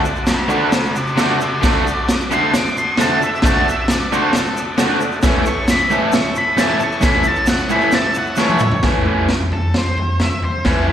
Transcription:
Already playing: F#4 A4 D5
0.05 shaker
0.16 shaker
0.27 F#4 D5, snare, crash, shaker
0.48 D3 A3 D4 F#4 A4 D5, shaker
0.72 F#4 D5, snare, crash, shaker
0.85 shaker
0.96 C5 E5, shaker
1.07 shaker
1.16 D3 A3 D4 F#4 A4, snare, crash, shaker
1.21 C5 E5
1.41 C5, shaker
1.45 E5
1.61 D3 A3 D4 F#4 A4 D5, kick, snare, crash, shaker
1.87 shaker
2.09 snare, crash, shaker
2.21 shaker
2.31 D3 A3 D4 F#4 A4 C6, shaker
2.54 D6, snare, crash, shaker
2.67 shaker
2.77 C6, shaker
2.97 D3 A3 D4 F#4 A4 A5, snare, crash, shaker
3.22 E5, shaker
3.35 shaker
3.42 D3 A3 D4 F#4 A4 A5, kick, snare, crash, shaker
3.69 E5, shaker
3.88 D5, snare, crash, shaker
4.01 shaker
4.12 D3 A3 D4 F#4 A4 C5, shaker
4.33 snare, crash, shaker
4.38 A4
4.46 shaker
4.57 shaker
4.78 D3 A3 D4 F#4 A4, snare, crash, shaker
5.00 shaker
5.12 shaker
5.22 A2 E3 A3 C#4 E4 A4 C#5, kick, snare, crash, shaker
5.46 C#6, shaker
5.68 B5, snare, crash, shaker
5.79 shaker
5.90 A2 E3 A3 C#4 E4 A4, shaker
6.12 C#6, snare, crash, shaker
6.24 shaker
6.35 B5, shaker
6.57 A2 E3 A3 C#4 E4 A4 A5, snare, crash, shaker
6.80 C#6, shaker
6.92 shaker
7.01 A2 E3 A3 C#4 E4 A4, kick, snare, crash, shaker
7.05 B5
7.13 shaker
7.23 shaker
7.28 A5
7.36 shaker
7.46 F#5, snare, crash, shaker
7.59 shaker
7.70 A2 E3 A3 C#4 E4 A4 B5, shaker
7.81 shaker
7.92 A5, snare, crash, shaker
8.14 shaker
8.18 F#5
8.26 shaker
8.36 A2 E3 A3 C#4 E4 A4, snare, shaker
8.41 C#5
8.48 high tom, shaker
8.59 mid tom, shaker
8.71 floor tom
8.83 A2 E3 A3 C#4 E4, kick, snare, floor tom
9.05 A2 E3 A3 C#4 E4, floor tom
9.29 snare, floor tom
9.52 A4, floor tom
9.74 C5, snare, floor tom
9.97 floor tom
10.20 E5, snare, floor tom
10.42 C5, floor tom
10.65 A2 E3 A3 C#4 E4 A4, kick, snare, floor tom
10.87 A2 E3 A3 C#4 E4, floor tom

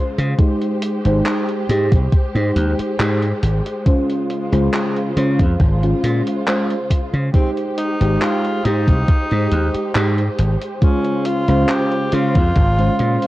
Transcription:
Already playing: C#3 G#3 F4 C5
0.18 C#3, closed hi-hat
0.38 G#3 D#4 G4 C5, kick, closed hi-hat
0.62 closed hi-hat
0.82 closed hi-hat
1.05 G#1 G#3 D#4 G4 C5, closed hi-hat
1.26 clap, closed hi-hat
1.48 closed hi-hat
1.69 G#2 G#3 D#4 G4 C5, closed hi-hat
1.92 C2, kick, closed hi-hat
2.12 kick, closed hi-hat
2.35 G#2 G#3 D#4 G4 C5, closed hi-hat
2.56 D#2, closed hi-hat
2.79 muted slap bass stroke, closed hi-hat
2.99 G#2 G#3 D#4 G4 C5, clap, closed hi-hat
3.22 closed hi-hat
3.43 G#1, closed hi-hat
3.66 closed hi-hat
3.85 C#3 G#3 C#4 F4 C5, kick, closed hi-hat
4.10 closed hi-hat
4.30 closed hi-hat
4.52 C#2 G#3 C#4 F4 C5, closed hi-hat
4.74 clap, closed hi-hat
4.96 closed hi-hat
5.16 C#3 G#3 C#4 F4 C5, closed hi-hat
5.39 F2, kick, closed hi-hat
5.60 G#1, kick, closed hi-hat
5.83 G#3 C#4 F4 C5, closed hi-hat
6.03 A#2, closed hi-hat
6.27 closed hi-hat
6.47 G#3 C#4 F4 C5, clap, closed hi-hat
6.70 closed hi-hat
6.90 kick, closed hi-hat
7.13 C#3, closed hi-hat
7.34 G#3 C4 D#4 G4 C5, kick, closed hi-hat
7.57 closed hi-hat
7.78 D#4, closed hi-hat
8.00 G#1 G#3 D#4 G4 C5, closed hi-hat
8.21 F4, clap, closed hi-hat
8.44 closed hi-hat
8.64 G#2 G#3 D#4 G4 C5, closed hi-hat
8.88 C2, kick, closed hi-hat
9.08 kick, closed hi-hat
9.31 G#2 G#3 D#4 G4 C5, closed hi-hat
9.52 D#2, closed hi-hat
9.74 muted slap bass stroke, closed hi-hat
9.95 G#2 G#3 D#4 G4 C5, clap, closed hi-hat
10.18 closed hi-hat
10.39 G#1, closed hi-hat
10.62 closed hi-hat
10.81 C#3 G#3 C#4 F4 C5, kick, closed hi-hat
11.05 closed hi-hat
11.25 F4, closed hi-hat
11.48 C#2 G#3 C#4 F4 C5, closed hi-hat
11.69 G4, clap, closed hi-hat
11.92 closed hi-hat
12.12 C#3 G#3 C#4 F4 C5, closed hi-hat
12.35 F2, kick, closed hi-hat
12.56 G#1, kick, closed hi-hat
12.78 G#3 C#4 F4 C5, closed hi-hat
12.99 A#2, closed hi-hat
13.22 closed hi-hat

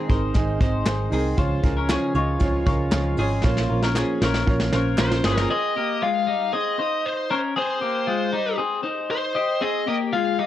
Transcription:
Already playing: D#3 C4 D#4 G#4 A#4 C5 D#5
0.08 G#1 G#3 C4 D#4 G#4 A#4 C5, kick, closed hi-hat
0.34 G#1 G#2 D#3 G#3 C4 D#4 G#4 D#5, kick, snare, closed hi-hat
0.59 G#1 G#3 C4 D#4 G#4 C5 D#5, kick, closed hi-hat
0.85 G#1 D#3 G#3 C4 D#4 G#4 C5, snare, clap, closed hi-hat
1.11 C2 G#3 C4 D#4 G#4 A#4, open hi-hat
1.37 C#2 C#3 F3 G#3 C#4 F4 G#4 C5 C#5, kick, closed hi-hat
1.63 C#2 F3 G#3 C#4 F4 G#4 A#4, kick, closed hi-hat
1.77 C#4 A#4
1.89 C#3 F3 G#3 C#4 F4 G#4 C#5, snare, clap, closed hi-hat
2.15 C#2 F3 G#3 C#4 F4 G#4 C#5 D#5, closed hi-hat
2.39 C#2 C#3 F3 G#3 C#4 F4 G#4 C#5, kick, closed hi-hat
2.65 C#2 F3 G#3 C#4 F4 G#4 A#4 C#5, kick, closed hi-hat
2.91 C#2 C#3 F3 G#3 C#4 F4 G#4 C#5, snare, clap, closed hi-hat
3.17 G#1 F3 G#3 C4 C#4 F4 G#4 C#5, open hi-hat
3.43 A#1 A#2 F3 A#3 C#4 F4 A#4 C5 C#5, kick, snare
3.57 snare
3.69 A#1 A#3 C#4 F4 A#4 C#5
3.73 F3
3.82 C#4 A#4, snare
3.94 A#2 F3 A#3 C#4 F4 G#4 A#4 C#5, snare, clap
4.21 A#1 F3 A#3 C#4 F4 A#4 C5, snare
4.34 snare
4.46 A#1 A#2 F3 A#3 C#4 F4 A#4 C#5, kick
4.60 snare
4.72 A#1 F3 A#3 C#4 F4 A#4 C5, snare
4.98 A#1 A#2 F3 A#3 C#4 F4 A#4 C5, snare, clap
5.11 snare
5.24 G1 F3 A#3 C4 C#4 F4 G#4 A#4 C#5, snare
5.38 snare
5.51 C4 G#4 D#5
5.76 A#3 G4
6.02 G#3 F4 F5
6.27 G3 D#4
6.53 C4 G#4 D#5
6.79 D#4 C5
7.06 C5
7.31 C#4 A#4 C5
7.56 C4 G#4 C5
7.81 A#3 G4
8.07 G#3 F4
8.33 G3 D#4
8.58 C4 G#4
8.83 D#4 C5
9.11 C5
9.35 G4 D#5
9.61 C4 G#4 D#5
9.87 A#3 G4 D#5
10.13 G#3 F4 F5
10.39 G3 D#4 F5

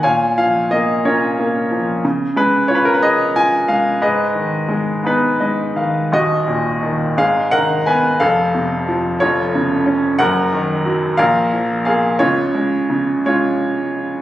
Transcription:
0.03 A#2 C#5 F5 G#5
0.38 F3 F5
0.71 A#3 D#5
1.05 C#4 F4 A#4 C#5
1.39 A#3
1.71 F3
2.05 C#3
2.36 G#3 B4
2.68 F4 C#5
2.75 B4
2.85 A#4
2.94 B4
3.02 G#4 D#5
3.35 F4 G#5
3.68 G#3 F5
4.01 G#2 G#4 B4 D#5
4.35 D#3
4.69 G#3
5.04 B3 D#4 B4
5.40 G#3 D#5
5.76 D#3 F5
6.12 D#1 D#2 F#4 D#5
6.48 A#2
6.83 D#3
7.17 G#1 G#2 G#4 F5
7.51 D#3 A#4 F#5
7.86 B3 B4 G#5
8.20 F1 F2 A4 F5
8.55 C3
8.88 F3
9.20 F1 F2 F4 C#5
9.55 C#3
9.86 C#4
10.19 F#1 F#2 A#4 F#5
10.53 D#3
10.86 F#3
11.17 A#1 A#2 A#4 F5
11.53 F3
11.85 A#3 G#4 F5
12.19 C#2 C#3 F4 C#5
12.55 G#3
12.90 C#3
13.26 G#3 F4 C#5

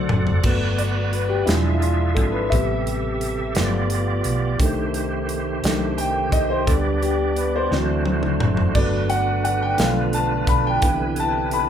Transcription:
Already playing: D3 A3 D4 F#4 A4 C5 D5 F#5
0.09 F#1, mid tom
0.27 floor tom
0.43 G1 F#3 A3 B3 F#4 B4 D5, kick, crash
0.78 D5, closed hi-hat
1.13 B4, closed hi-hat
1.29 G4
1.45 E1 F3 G#3 D4 E4 F4 G#4 E5, snare, closed hi-hat
1.74 E4
1.80 F4, closed hi-hat
2.14 G#1 A4, kick, closed hi-hat
2.31 B4
2.50 A1 C3 G3 B3 G4 A4 E5, kick, closed hi-hat
2.87 closed hi-hat
3.21 closed hi-hat
3.55 G1 F3 A3 B3 F4 D5, snare, closed hi-hat
3.90 closed hi-hat
4.24 B1, closed hi-hat
4.59 C2 D#3 A3 D4 C5, kick, closed hi-hat
4.94 closed hi-hat
5.29 closed hi-hat
5.63 C2 D#3 A3 D4, snare, closed hi-hat
5.98 G5, closed hi-hat
6.32 C2 D#5, kick, closed hi-hat
6.50 C5
6.67 D2 D3 G3 B3 D4 A4 D5, kick, closed hi-hat
7.02 G4, closed hi-hat
7.36 B4, closed hi-hat
7.56 C5
7.71 D2 E3 F#3 A3 C4 F#4 C5 D5, snare
8.06 high tom
8.23 mid tom
8.40 F#1, mid tom
8.57 floor tom
8.74 G1 D3 F#3 A3 B3 D4 B4 D5, kick, splash
9.09 F#5, closed hi-hat
9.44 F#5, closed hi-hat
9.62 G5
9.78 B1 F3 A3 B3 D4 F4 F5, snare, closed hi-hat
10.13 A5, closed hi-hat
10.47 B1 B5, kick, closed hi-hat
10.67 G5
10.82 C2 C3 E3 B3 D4 E4, kick, closed hi-hat
11.16 A5, closed hi-hat
11.51 B5, closed hi-hat

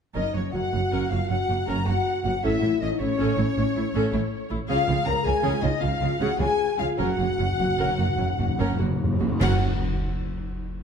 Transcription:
0.14 F#1 F#2 C#4 D#4 A#4 D#5
0.33 F#1 F#2 A#3 C#4 F#4 C#5
0.51 F#1 F#2 F#3 C#4 F#4 F#5
0.72 F#1 F#2 A#3 F#4
0.91 F#1 F#2 C#4 A#4
1.09 F#1 F#2 A#3 F4 F#4 F5
1.29 F#1 F#2 F#3 C#4 F#4 F#5
1.48 F#1 F#2 A#3 F#4
1.66 F#1 F#2 C#4 A#4 A#5
1.85 F#1 F#2 A#3 F#4 F#5
2.23 F#1 F#2 A#3 F#4 F#5
2.43 A1 A2 C#4 E4 A4 E5
2.62 A1 A2 A3 E4
2.81 A1 A2 E3 C#4 D#4 D#5
2.99 A1 A2 A3 C#4 E4 C#5
3.18 A1 A2 C#4 A4
3.37 A1 A2 A3 E4
3.57 A1 A2 E3 C#4
3.75 A1 A2 A3 E4
3.94 A1 A2 C#4 A4
4.12 A1 A2 A3 E4
4.50 A1 A2 A3 E4
4.68 C#2 C#3 C#4 F4 G#4 F5
4.87 C#2 C#3 G#3 F4
5.06 C#2 C#3 F3 C#4 A#4 A#5
5.23 C#2 C#3 G#3 F4 G#4 G#5
5.43 C#2 C#3 C#4 G#4
5.62 C#2 C#3 G#3 D#4 F4 D#5
5.81 C#2 C#3 F3 C#4 F4 F5
6.00 C#2 C#3 G#3 F4
6.19 C#2 C#3 C#4 F#4 G#4 F#5
6.39 C#2 C#3 G#3 F4 G#4 G#5
6.78 C#2 C#3 G#3 F4 F5
6.98 F#1 F#2 C#4 F#4 A#4 F#5
7.07 F#2
7.14 F#2
7.18 F#1 F#2 A#3 F#4
7.29 F#2
7.37 F#1 F#2 F#3 C#4
7.44 F#2
7.52 F#2
7.59 F#1 F#2 A#3 F#4
7.68 F#2
7.76 F#1 F#2 C#4 A#4
7.84 F#2
7.92 F#2
7.98 F#1 F#2 A#3 F#4
8.08 F#2
8.16 F#1 F#2 F#3 C#4
8.24 F#2
8.32 F#2
8.38 F#1 F#2 A#3 F#4
8.48 F#2
8.56 F#2 C#4 A#4
8.60 F#1
8.65 F#2
8.73 F#2
8.79 F#1 F#2 A#3 F#4
8.88 F#2
8.96 F#2
9.04 F#2
9.13 F#2
9.20 F#1 F#2 A#3 F#4
9.29 F#2
9.40 F#1 F#2 C#4 F#4 A#4 F#5, concert bass drum, crash

